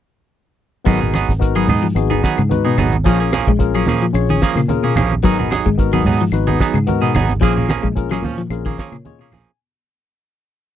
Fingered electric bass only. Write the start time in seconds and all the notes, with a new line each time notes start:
0.86 G#1
1.29 G#1
1.67 G#2
1.95 G#1
2.38 G#2
2.78 G#1
3.06 A#1
3.47 A#1
3.87 A#2
4.14 A#1
4.55 A#2
4.96 A#1
5.24 G#1
5.66 G#1
6.05 G#2
6.32 G#1
6.74 G#2
7.15 G#1
7.42 A#1
7.83 A#1
8.22 A#2
8.50 A#1
8.92 A#2
9.32 A#1